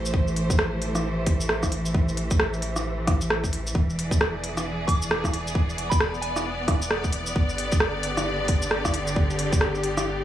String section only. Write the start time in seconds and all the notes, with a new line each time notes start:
Already playing: E3 A3 G4 C5
3.94 B3 G#4 D5
7.35 D3
7.55 G4